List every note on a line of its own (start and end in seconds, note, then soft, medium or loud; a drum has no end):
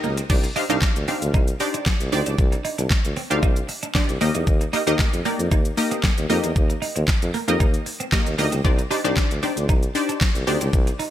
0.00 0.20 C#2 medium
0.00 0.13 A#3 medium
0.00 0.16 D#4 medium
0.00 0.16 G4 medium
0.00 0.17 A#4 medium
0.00 0.17 D#5 loud
0.00 shaker medium
0.17 0.25 C4 medium
0.17 closed hi-hat medium
0.17 shaker medium
0.30 0.46 C2 loud
0.30 0.47 D4 medium
0.30 0.47 D#4 medium
0.30 0.47 G4 medium
0.30 0.47 C5 medium
0.30 0.47 D5 loud
0.30 kick loud
0.30 crash loud
0.30 shaker medium
0.44 muted clean electric guitar stroke soft
0.44 closed hi-hat medium
0.44 shaker medium
0.56 0.65 D4 medium
0.56 0.65 D#4 medium
0.56 0.65 G4 medium
0.56 0.65 C5 medium
0.56 0.65 F5 loud
0.56 open hi-hat medium
0.56 shaker medium
0.70 0.77 C2 medium
0.70 0.95 D4 loud
0.70 0.78 D4 medium
0.70 0.95 D#4 medium
0.70 0.95 G4 medium
0.70 0.95 C5 medium
0.70 0.95 F5 loud
0.70 closed hi-hat medium
0.70 shaker medium
0.82 kick loud
0.82 snare medium
0.82 clap loud
0.82 shaker medium
0.96 1.04 D2 medium
0.96 closed hi-hat medium
0.96 shaker medium
1.08 1.17 C4 medium
1.08 1.42 D4 medium
1.08 1.42 D#4 medium
1.08 1.42 G4 medium
1.08 1.42 C5 medium
1.08 1.42 F5 medium
1.08 open hi-hat medium
1.08 shaker soft
1.22 1.36 D2 medium
1.22 closed hi-hat medium
1.22 shaker medium
1.34 1.51 C2 loud
1.34 1.43 D#4 medium
1.34 kick loud
1.34 shaker medium
1.48 closed hi-hat medium
1.48 shaker medium
1.60 1.94 D4 medium
1.60 1.94 D#4 medium
1.60 1.94 G4 medium
1.60 1.94 C5 medium
1.60 1.94 D5 loud
1.60 muted clean electric guitar stroke soft
1.60 open hi-hat medium
1.60 shaker medium
1.74 1.82 D4 medium
1.74 closed hi-hat medium
1.74 shaker medium
1.86 muted clean electric guitar stroke soft
1.86 kick loud
1.86 snare loud
1.86 clap loud
1.86 shaker medium
2.00 2.08 C2 medium
2.00 closed hi-hat medium
2.00 shaker medium
2.12 2.21 D2 medium
2.12 2.21 C4 medium
2.12 2.80 D4 loud
2.12 2.80 D#4 medium
2.12 2.80 G4 medium
2.12 2.80 C5 medium
2.12 2.80 D5 loud
2.12 open hi-hat medium
2.12 shaker medium
2.26 2.34 C#2 medium
2.26 2.34 D4 medium
2.26 closed hi-hat medium
2.26 shaker medium
2.38 2.55 C2 loud
2.38 kick loud
2.38 shaker medium
2.52 muted clean electric guitar stroke soft
2.52 closed hi-hat medium
2.52 shaker medium
2.65 2.74 D#4 medium
2.65 open hi-hat medium
2.65 shaker medium
2.78 2.86 C2 loud
2.78 2.86 D4 medium
2.78 closed hi-hat medium
2.78 shaker medium
2.91 kick loud
2.91 snare medium
2.91 clap loud
2.91 shaker medium
3.05 3.12 D2 medium
3.05 closed hi-hat medium
3.05 shaker medium
3.16 3.26 C4 medium
3.16 open hi-hat medium
3.16 shaker soft
3.30 3.38 D2 medium
3.30 3.72 D4 medium
3.30 3.72 D#4 medium
3.30 3.72 G4 medium
3.30 3.72 C5 medium
3.30 3.72 F5 medium
3.30 closed hi-hat medium
3.30 shaker medium
3.43 3.59 C2 loud
3.43 3.52 D#4 medium
3.43 kick loud
3.43 shaker medium
3.56 closed hi-hat medium
3.56 shaker medium
3.69 muted clean electric guitar stroke medium
3.69 open hi-hat medium
3.69 shaker medium
3.83 3.91 D4 medium
3.83 closed hi-hat medium
3.83 shaker medium
3.95 4.12 D4 medium
3.95 4.12 D#4 medium
3.95 4.12 G4 medium
3.95 4.12 C5 medium
3.95 4.12 D5 loud
3.95 muted clean electric guitar stroke soft
3.95 kick loud
3.95 snare loud
3.95 clap loud
3.95 shaker medium
4.09 4.17 C2 medium
4.09 closed hi-hat medium
4.09 shaker medium
4.21 4.30 D#2 loud
4.21 4.63 A#3 loud
4.21 4.30 C4 medium
4.21 4.63 D#4 medium
4.21 4.63 G4 medium
4.21 4.64 A#4 medium
4.21 4.64 D#5 loud
4.21 open hi-hat medium
4.21 shaker medium
4.35 4.43 E2 medium
4.35 4.43 D#4 medium
4.35 closed hi-hat medium
4.35 shaker medium
4.47 4.64 D#2 loud
4.47 kick loud
4.47 shaker medium
4.61 muted clean electric guitar stroke soft
4.61 closed hi-hat medium
4.61 shaker medium
4.73 4.82 A#3 medium
4.73 4.82 D#4 medium
4.73 4.82 G4 medium
4.73 4.82 A#4 medium
4.73 4.82 D#5 loud
4.73 open hi-hat medium
4.73 shaker medium
4.87 4.95 D#2 loud
4.87 5.12 A#3 medium
4.87 4.95 C4 medium
4.87 5.12 D#4 medium
4.87 5.12 G4 medium
4.87 5.12 A#4 medium
4.87 5.12 D#5 loud
4.87 closed hi-hat medium
4.87 shaker medium
4.99 kick loud
4.99 snare medium
4.99 clap loud
4.99 shaker medium
5.13 5.21 F2 medium
5.13 closed hi-hat medium
5.13 shaker medium
5.25 5.59 A#3 medium
5.25 5.34 A#3 medium
5.25 5.59 D#4 medium
5.25 5.59 G4 medium
5.25 5.59 A#4 medium
5.25 5.60 D5 medium
5.25 open hi-hat medium
5.25 shaker soft
5.39 5.47 F2 medium
5.39 closed hi-hat medium
5.39 shaker medium
5.52 5.68 D#2 loud
5.52 5.60 D#4 medium
5.52 kick loud
5.52 shaker medium
5.65 closed hi-hat medium
5.65 shaker medium
5.77 6.11 A#3 loud
5.77 6.11 D#4 medium
5.77 6.12 G4 medium
5.77 6.12 A#4 medium
5.77 6.12 D#5 loud
5.77 muted clean electric guitar stroke medium
5.77 open hi-hat medium
5.77 shaker medium
5.91 5.99 C4 medium
5.91 closed hi-hat medium
5.91 shaker medium
6.03 muted clean electric guitar stroke soft
6.03 kick loud
6.03 snare loud
6.03 clap loud
6.03 shaker medium
6.18 6.25 D#2 medium
6.18 closed hi-hat medium
6.18 shaker medium
6.29 6.39 F2 loud
6.29 6.97 A#3 loud
6.29 6.39 A#3 medium
6.29 6.97 D#4 medium
6.29 6.97 G4 medium
6.29 6.98 A#4 medium
6.29 6.98 D#5 loud
6.29 open hi-hat medium
6.29 shaker medium
6.44 6.51 E2 medium
6.44 6.51 C4 medium
6.44 closed hi-hat medium
6.44 shaker medium
6.56 6.72 D#2 loud
6.56 kick loud
6.56 shaker medium
6.70 muted clean electric guitar stroke soft
6.70 closed hi-hat medium
6.70 shaker medium
6.82 6.91 D#4 medium
6.82 open hi-hat medium
6.82 shaker medium
6.96 7.04 D#2 loud
6.96 7.04 C4 medium
6.96 closed hi-hat medium
6.96 shaker medium
7.08 kick loud
7.08 snare medium
7.08 clap loud
7.08 shaker medium
7.22 7.30 F2 loud
7.22 closed hi-hat medium
7.22 shaker medium
7.34 7.43 A#3 medium
7.34 open hi-hat medium
7.34 shaker soft
7.48 7.56 F2 loud
7.48 7.89 A#3 medium
7.48 7.89 D#4 medium
7.48 7.89 G4 medium
7.48 7.89 A#4 medium
7.48 7.89 D#5 medium
7.48 closed hi-hat medium
7.48 shaker medium
7.60 7.77 D#2 loud
7.60 7.69 D#4 medium
7.60 kick loud
7.60 shaker medium
7.74 closed hi-hat medium
7.74 shaker medium
7.86 muted clean electric guitar stroke soft
7.86 open hi-hat medium
7.86 shaker medium
8.00 8.08 C4 medium
8.00 closed hi-hat medium
8.00 shaker medium
8.12 8.30 A#3 medium
8.12 8.30 D#4 medium
8.12 8.30 G4 medium
8.12 8.30 A#4 medium
8.12 8.30 D#5 loud
8.12 muted clean electric guitar stroke soft
8.12 kick loud
8.12 snare loud
8.12 clap loud
8.12 shaker medium
8.26 8.34 D#2 medium
8.26 closed hi-hat medium
8.26 shaker medium
8.38 8.47 D2 medium
8.38 8.56 A#3 medium
8.38 8.47 A#3 medium
8.38 8.56 D#4 medium
8.38 8.56 G4 medium
8.38 8.56 A#4 medium
8.38 8.56 D#5 loud
8.38 open hi-hat medium
8.38 shaker medium
8.52 8.60 C#2 medium
8.52 8.60 C4 medium
8.52 closed hi-hat medium
8.52 shaker medium
8.64 8.81 C2 loud
8.64 8.82 D4 medium
8.64 8.82 D#4 medium
8.64 8.82 G4 medium
8.64 8.82 C5 medium
8.64 8.82 D5 loud
8.64 kick loud
8.64 shaker medium
8.78 muted clean electric guitar stroke soft
8.78 closed hi-hat medium
8.78 shaker medium
8.90 8.99 D4 medium
8.90 9.00 D#4 medium
8.90 9.00 G4 medium
8.90 9.00 C5 medium
8.90 9.00 D5 loud
8.90 open hi-hat medium
8.90 shaker medium
9.04 9.12 C2 medium
9.04 9.29 D4 loud
9.04 9.12 D4 medium
9.04 9.30 D#4 medium
9.04 9.30 G4 medium
9.04 9.30 C5 medium
9.04 9.30 D5 loud
9.04 closed hi-hat medium
9.04 shaker medium
9.17 kick loud
9.17 snare medium
9.17 clap loud
9.17 shaker medium
9.31 9.38 D2 medium
9.31 closed hi-hat medium
9.31 shaker medium
9.43 9.52 C4 medium
9.43 9.77 D4 medium
9.43 9.77 D#4 medium
9.43 9.77 G4 medium
9.43 9.77 C5 medium
9.43 9.77 D5 medium
9.43 open hi-hat medium
9.43 shaker soft
9.57 9.71 D2 loud
9.57 closed hi-hat medium
9.57 shaker medium
9.69 9.85 C2 loud
9.69 9.78 D#4 medium
9.69 kick loud
9.69 shaker medium
9.83 closed hi-hat medium
9.83 shaker medium
9.95 10.29 D4 medium
9.95 10.29 D#4 medium
9.95 10.29 G4 medium
9.95 10.29 C5 medium
9.95 10.29 D5 loud
9.95 muted clean electric guitar stroke soft
9.95 open hi-hat medium
9.95 shaker medium
10.09 10.17 D4 medium
10.09 closed hi-hat medium
10.09 shaker medium
10.21 muted clean electric guitar stroke soft
10.21 kick loud
10.21 snare loud
10.21 clap loud
10.21 shaker medium
10.35 10.43 C2 medium
10.35 closed hi-hat medium
10.35 shaker medium
10.47 10.56 D2 medium
10.47 10.56 C4 medium
10.47 11.10 D4 loud
10.47 11.10 D#4 medium
10.47 11.10 G4 medium
10.47 11.10 C5 medium
10.47 11.10 D5 loud
10.47 open hi-hat medium
10.47 shaker medium
10.61 10.69 C#2 medium
10.61 10.69 D4 medium
10.61 closed hi-hat medium
10.61 shaker medium
10.73 10.90 C2 loud
10.73 kick loud
10.73 shaker medium
10.87 muted clean electric guitar stroke soft
10.87 closed hi-hat medium
10.87 shaker medium
10.99 11.08 D#4 medium
10.99 open hi-hat medium
10.99 shaker medium